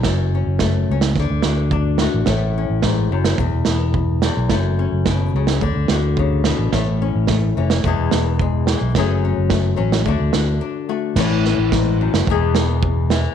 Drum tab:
CC |----------------|----------------|----------------|----------------|
SD |o---o--oo-o---o-|o---o--o--o---o-|o---o--o--o---o-|o---o--o--o---o-|
BD |o---o---o---o---|o---o---o---o---|o---o---o---o---|o---o---o---o---|

CC |----------------|x---------------|
SD |o---o--o--o-----|o-o-o--o--o---o-|
BD |o---o---o-------|o---o---o---o---|